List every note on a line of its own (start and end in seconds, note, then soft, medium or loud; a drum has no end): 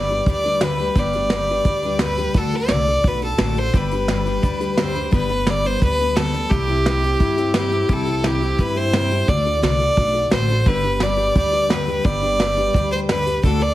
0.00 0.19 G1 medium
0.00 0.26 D5 medium
0.10 0.26 G3 soft
0.10 0.26 D4 soft
0.10 0.27 G4 soft
0.10 0.27 B4 soft
0.10 closed hi-hat soft
0.26 0.88 D2 medium
0.26 0.44 G3 soft
0.26 0.44 D4 medium
0.26 0.44 G4 medium
0.26 0.43 B4 medium
0.26 kick medium
0.26 closed hi-hat medium
0.31 0.65 D5 medium
0.44 0.61 G3 soft
0.44 0.62 D4 soft
0.44 0.62 G4 soft
0.44 0.61 B4 soft
0.44 closed hi-hat medium
0.61 0.79 G2 medium
0.61 0.79 D3 medium
0.61 0.79 G3 medium
0.61 0.79 D4 medium
0.61 0.79 G4 medium
0.61 0.79 B4 medium
0.61 1.00 B4 medium
0.61 snare loud
0.61 closed hi-hat medium
0.78 0.96 G3 soft
0.78 0.96 D4 soft
0.78 0.96 G4 soft
0.78 0.96 B4 medium
0.78 closed hi-hat medium
0.95 1.58 G1 medium
0.95 1.13 G2 medium
0.95 1.14 D3 medium
0.95 1.14 G3 medium
0.95 1.14 D4 medium
0.95 1.14 G4 medium
0.95 1.13 B4 medium
0.95 2.01 D5 medium
0.95 kick loud
0.95 closed hi-hat medium
1.13 1.32 G3 soft
1.13 1.32 D4 soft
1.13 1.32 G4 soft
1.13 1.31 B4 medium
1.13 closed hi-hat medium
1.30 1.49 G2 medium
1.30 1.49 D3 medium
1.30 1.49 G3 medium
1.30 1.49 D4 medium
1.30 1.50 G4 medium
1.30 snare loud
1.30 closed hi-hat medium
1.34 1.49 B4 medium
1.47 1.66 D4 soft
1.47 1.66 G4 medium
1.47 1.66 B4 medium
1.47 closed hi-hat medium
1.52 1.65 G3 medium
1.65 2.27 D2 medium
1.65 1.83 G3 medium
1.65 1.84 D4 medium
1.65 1.84 G4 medium
1.65 1.83 B4 medium
1.65 kick loud
1.65 closed hi-hat medium
1.82 2.01 D4 soft
1.82 2.01 G4 medium
1.82 2.00 B4 medium
1.82 closed hi-hat medium
1.86 2.00 G3 soft
1.99 2.18 G2 medium
1.99 2.18 D3 medium
1.99 2.18 G3 medium
1.99 2.18 D4 medium
1.99 2.17 G4 medium
1.99 2.17 B4 medium
1.99 2.39 B4 medium
1.99 snare loud
1.99 closed hi-hat medium
2.17 2.36 G3 soft
2.17 2.35 D4 soft
2.17 2.35 G4 medium
2.17 2.35 B4 medium
2.17 closed hi-hat medium
2.34 2.66 D2 medium
2.34 2.53 D3 medium
2.34 2.53 A3 medium
2.34 2.53 D4 medium
2.34 2.53 F#4 medium
2.34 2.52 A4 medium
2.34 2.57 A4 medium
2.34 kick loud
2.34 closed hi-hat medium
2.51 2.71 F#4 soft
2.51 2.70 A4 soft
2.51 closed hi-hat medium
2.55 2.70 D4 soft
2.55 3.09 D5 medium
2.68 2.99 C2 medium
2.68 2.87 D3 medium
2.68 2.88 A3 medium
2.68 2.88 D4 medium
2.68 2.88 F#4 medium
2.68 2.87 A4 medium
2.68 snare loud
2.68 closed hi-hat medium
2.86 3.04 D4 soft
2.86 3.04 F#4 soft
2.86 3.05 A4 soft
2.86 closed hi-hat soft
3.04 3.34 B1 medium
3.04 3.21 A3 soft
3.04 3.22 D4 medium
3.04 3.22 F#4 medium
3.04 3.21 A4 medium
3.04 3.23 B4 medium
3.04 kick loud
3.04 closed hi-hat medium
3.22 3.40 D4 soft
3.22 3.40 F#4 soft
3.22 3.39 A4 medium
3.22 3.60 A4 medium
3.22 closed hi-hat medium
3.38 3.68 A1 medium
3.38 3.57 D3 medium
3.38 3.57 A3 medium
3.38 3.57 D4 medium
3.38 3.57 F#4 medium
3.38 3.55 A4 medium
3.38 snare loud
3.38 closed hi-hat medium
3.56 3.73 D4 soft
3.56 3.74 F#4 soft
3.56 3.74 A4 soft
3.56 3.78 C5 medium
3.56 closed hi-hat medium
3.74 4.36 G1 medium
3.74 3.91 G2 medium
3.74 3.91 D3 medium
3.74 3.91 G3 medium
3.74 3.91 D4 medium
3.74 3.92 G4 medium
3.74 3.91 B4 medium
3.74 4.79 B4 medium
3.74 kick loud
3.74 closed hi-hat medium
3.91 4.07 G3 soft
3.91 4.08 D4 soft
3.91 4.08 G4 soft
3.91 4.09 B4 soft
3.91 closed hi-hat medium
4.08 4.26 G2 medium
4.08 4.26 D3 medium
4.08 4.25 G3 medium
4.08 4.25 D4 medium
4.08 4.24 G4 medium
4.08 4.23 B4 medium
4.08 snare loud
4.08 closed hi-hat medium
4.25 4.41 G3 soft
4.25 4.42 D4 soft
4.25 4.43 G4 soft
4.25 4.42 B4 soft
4.25 closed hi-hat medium
4.42 5.05 D2 medium
4.42 4.60 G3 medium
4.42 4.60 D4 medium
4.42 4.59 G4 medium
4.42 4.58 B4 medium
4.42 kick medium
4.42 closed hi-hat medium
4.60 4.77 G3 soft
4.60 4.77 D4 soft
4.60 4.77 G4 soft
4.60 4.77 B4 medium
4.60 closed hi-hat medium
4.77 4.95 G2 medium
4.77 4.95 D3 medium
4.77 4.94 G3 medium
4.77 4.94 D4 medium
4.77 4.93 G4 medium
4.77 4.92 B4 medium
4.77 5.11 C5 medium
4.77 snare loud
4.77 closed hi-hat medium
4.94 5.10 G3 soft
4.94 5.11 D4 soft
4.94 5.12 G4 soft
4.94 5.11 B4 medium
4.94 closed hi-hat medium
5.11 5.74 G1 medium
5.11 5.29 G2 medium
5.11 5.29 D3 medium
5.11 5.29 G3 medium
5.11 5.29 B3 medium
5.11 5.29 D4 medium
5.11 5.28 B4 medium
5.11 kick loud
5.11 closed hi-hat medium
5.15 5.51 B4 medium
5.29 5.45 G3 soft
5.29 5.46 B3 soft
5.29 5.46 D4 soft
5.29 5.46 B4 soft
5.29 closed hi-hat medium
5.46 5.64 G2 medium
5.46 5.64 D3 medium
5.46 5.64 G3 medium
5.46 5.64 B3 medium
5.46 5.64 D4 medium
5.46 5.63 B4 medium
5.46 5.68 D5 medium
5.46 snare loud
5.46 closed hi-hat medium
5.64 5.80 G3 soft
5.64 5.80 B3 soft
5.64 5.81 D4 soft
5.64 5.82 B4 medium
5.64 5.83 C5 medium
5.64 closed hi-hat medium
5.81 6.44 D2 medium
5.81 5.99 G3 medium
5.81 5.99 B3 medium
5.81 5.98 D4 medium
5.81 5.97 B4 medium
5.81 6.17 B4 loud
5.81 kick loud
5.81 closed hi-hat medium
5.99 6.16 G3 soft
5.99 6.16 B3 soft
5.99 6.17 D4 soft
5.99 6.16 B4 soft
5.99 closed hi-hat medium
6.16 6.34 G2 medium
6.16 6.34 D3 medium
6.16 6.34 G3 medium
6.16 6.34 B3 medium
6.16 6.33 D4 medium
6.16 6.52 A4 medium
6.16 6.32 B4 medium
6.16 snare loud
6.16 closed hi-hat medium
6.34 6.49 G3 soft
6.34 6.50 B3 soft
6.34 6.51 D4 soft
6.34 6.51 B4 soft
6.34 closed hi-hat medium
6.50 7.13 C2 medium
6.50 6.68 C3 medium
6.50 6.68 G3 medium
6.50 6.68 C4 medium
6.50 6.67 E4 medium
6.50 7.54 G4 medium
6.50 6.66 G4 medium
6.50 kick loud
6.50 closed hi-hat medium
6.67 6.85 C4 soft
6.67 6.85 E4 soft
6.67 6.85 G4 soft
6.67 closed hi-hat medium
6.85 7.03 C3 medium
6.85 7.03 G3 medium
6.85 7.03 C4 medium
6.85 7.02 E4 medium
6.85 7.01 G4 medium
6.85 snare loud
6.85 closed hi-hat medium
7.02 7.18 C4 soft
7.02 7.19 E4 medium
7.02 7.20 G4 medium
7.02 closed hi-hat medium
7.19 7.82 G2 medium
7.19 7.37 G3 medium
7.19 7.37 C4 medium
7.19 7.36 E4 medium
7.19 7.35 G4 medium
7.19 kick loud
7.19 closed hi-hat medium
7.36 7.53 C4 soft
7.36 7.54 E4 soft
7.36 7.54 G4 medium
7.36 closed hi-hat medium
7.54 7.72 C3 medium
7.54 7.72 G3 medium
7.54 7.72 C4 medium
7.54 7.71 E4 medium
7.54 7.70 G4 medium
7.54 7.95 G4 medium
7.54 snare loud
7.54 closed hi-hat medium
7.72 7.88 C4 soft
7.72 7.88 E4 soft
7.72 7.88 G4 medium
7.72 closed hi-hat medium
7.88 8.51 C2 medium
7.88 8.06 C3 medium
7.88 8.06 G3 medium
7.88 8.07 C4 medium
7.88 8.06 E4 medium
7.88 8.05 G4 medium
7.88 kick loud
7.88 closed hi-hat medium
7.93 8.27 A4 medium
8.06 8.23 C4 soft
8.06 8.23 E4 soft
8.06 8.24 G4 soft
8.06 closed hi-hat medium
8.23 8.41 C3 medium
8.23 8.41 G3 medium
8.23 8.41 C4 medium
8.23 8.41 E4 medium
8.23 8.40 G4 medium
8.23 8.61 G4 medium
8.23 snare loud
8.23 closed hi-hat medium
8.41 8.58 C4 soft
8.41 8.59 E4 soft
8.41 8.59 G4 medium
8.41 closed hi-hat medium
8.58 9.21 G2 medium
8.58 8.76 G3 medium
8.58 8.76 C4 medium
8.58 8.75 E4 medium
8.58 8.74 G4 medium
8.58 8.78 B4 medium
8.58 kick medium
8.58 closed hi-hat medium
8.75 8.92 C4 soft
8.75 8.93 E4 soft
8.75 8.93 G4 soft
8.75 9.30 C5 loud
8.75 closed hi-hat soft
8.93 9.10 C3 medium
8.93 9.11 G3 medium
8.93 9.11 C4 medium
8.93 9.11 E4 medium
8.93 9.10 G4 medium
8.93 snare loud
8.93 closed hi-hat medium
9.11 9.28 C4 soft
9.11 9.28 E4 soft
9.11 9.28 G4 medium
9.11 closed hi-hat medium
9.27 9.59 D2 medium
9.27 9.45 D3 medium
9.27 9.45 A3 medium
9.27 9.45 D4 medium
9.27 9.45 F#4 medium
9.27 9.44 A4 medium
9.27 9.63 D5 medium
9.27 kick loud
9.27 closed hi-hat medium
9.45 9.62 D4 soft
9.45 9.63 F#4 soft
9.45 9.62 A4 medium
9.45 closed hi-hat medium
9.62 9.92 C2 medium
9.62 9.80 D3 medium
9.62 9.80 A3 medium
9.62 9.80 D4 medium
9.62 9.79 F#4 medium
9.62 9.78 A4 medium
9.62 10.29 D5 loud
9.62 snare loud
9.62 closed hi-hat medium
9.79 9.97 D4 soft
9.79 9.97 F#4 soft
9.79 9.97 A4 soft
9.79 closed hi-hat medium
9.97 10.27 B1 medium
9.97 10.15 A3 medium
9.97 10.14 D4 medium
9.97 10.13 F#4 medium
9.97 10.12 A4 medium
9.97 kick loud
9.97 closed hi-hat medium
10.14 10.32 D4 soft
10.14 10.32 F#4 medium
10.14 10.31 A4 medium
10.14 closed hi-hat medium
10.31 10.61 A1 medium
10.31 10.49 D3 medium
10.31 10.50 A3 medium
10.31 10.50 D4 medium
10.31 10.50 F#4 medium
10.31 10.48 A4 medium
10.31 10.69 C5 medium
10.31 snare loud
10.31 closed hi-hat medium
10.49 10.66 D4 soft
10.49 10.67 F#4 soft
10.49 10.67 A4 soft
10.49 closed hi-hat medium
10.66 11.28 G1 medium
10.66 10.84 G2 medium
10.66 10.84 D3 medium
10.66 10.84 G3 medium
10.66 10.83 D4 medium
10.66 10.83 G4 medium
10.66 11.04 B4 medium
10.66 10.82 B4 medium
10.66 kick loud
10.66 closed hi-hat medium
10.83 10.99 G3 soft
10.83 11.00 D4 soft
10.83 11.00 G4 soft
10.83 10.99 B4 soft
10.83 closed hi-hat medium
11.00 11.18 G2 soft
11.00 11.18 D3 medium
11.00 11.17 G3 medium
11.00 11.17 D4 medium
11.00 11.16 G4 medium
11.00 11.16 B4 medium
11.00 11.37 D5 medium
11.00 snare loud
11.00 closed hi-hat medium
11.17 11.33 G3 soft
11.17 11.34 D4 soft
11.17 11.34 G4 soft
11.17 11.35 B4 medium
11.17 closed hi-hat medium
11.34 11.97 D2 medium
11.34 11.52 G3 medium
11.34 11.52 D4 medium
11.34 11.52 G4 medium
11.34 11.51 B4 medium
11.34 11.73 D5 loud
11.34 kick medium
11.34 closed hi-hat medium
11.52 11.68 G3 soft
11.52 11.68 D4 soft
11.52 11.69 G4 soft
11.52 11.69 B4 soft
11.52 closed hi-hat medium
11.69 11.87 G2 medium
11.69 11.87 D3 medium
11.69 11.87 G3 medium
11.69 11.87 D4 medium
11.69 11.86 G4 medium
11.69 11.86 B4 medium
11.69 12.07 B4 medium
11.69 snare loud
11.69 closed hi-hat medium
11.87 12.03 G3 soft
11.87 12.03 D4 soft
11.87 12.03 G4 soft
11.87 12.04 B4 medium
11.87 closed hi-hat medium
12.03 12.67 G1 medium
12.03 12.22 G2 medium
12.03 12.22 D3 medium
12.03 12.22 G3 medium
12.03 12.22 D4 medium
12.03 12.22 G4 medium
12.03 12.20 B4 medium
12.03 12.91 D5 loud
12.03 kick loud
12.03 closed hi-hat medium
12.21 12.38 G3 soft
12.21 12.38 D4 soft
12.21 12.39 G4 medium
12.21 12.39 B4 soft
12.21 closed hi-hat medium
12.39 12.57 G2 medium
12.39 12.57 D3 medium
12.39 12.57 G3 medium
12.39 12.56 D4 medium
12.39 12.56 G4 medium
12.39 12.55 B4 medium
12.39 snare loud
12.39 closed hi-hat medium
12.56 12.72 G3 medium
12.56 12.73 D4 soft
12.56 12.74 G4 medium
12.56 12.74 B4 medium
12.56 closed hi-hat medium
12.73 13.36 D2 medium
12.73 12.91 G3 medium
12.73 12.92 D4 medium
12.73 12.91 G4 medium
12.73 12.90 B4 medium
12.73 kick loud
12.73 closed hi-hat medium
12.92 13.09 G3 soft
12.92 13.09 D4 soft
12.92 13.10 G4 medium
12.92 13.09 B4 soft
12.92 13.00 C5 medium
12.92 closed hi-hat medium
13.09 13.26 G2 medium
13.09 13.27 D3 medium
13.09 13.27 G3 medium
13.09 13.26 D4 medium
13.09 13.25 G4 medium
13.09 13.41 B4 medium
13.09 13.25 B4 medium
13.09 snare loud
13.09 closed hi-hat medium
13.26 13.43 G3 soft
13.26 13.43 D4 soft
13.26 13.44 G4 soft
13.26 13.43 B4 soft
13.26 closed hi-hat medium
13.43 13.74 D2 medium
13.43 13.61 D3 medium
13.43 13.61 A3 medium
13.43 13.61 D4 medium
13.43 13.60 F#4 medium
13.43 13.63 A4 medium
13.43 13.59 A4 medium
13.43 kick loud
13.43 closed hi-hat medium
13.60 13.74 D4 soft
13.60 13.74 F#4 soft
13.60 13.74 A4 soft
13.60 13.74 D5 medium
13.60 closed hi-hat medium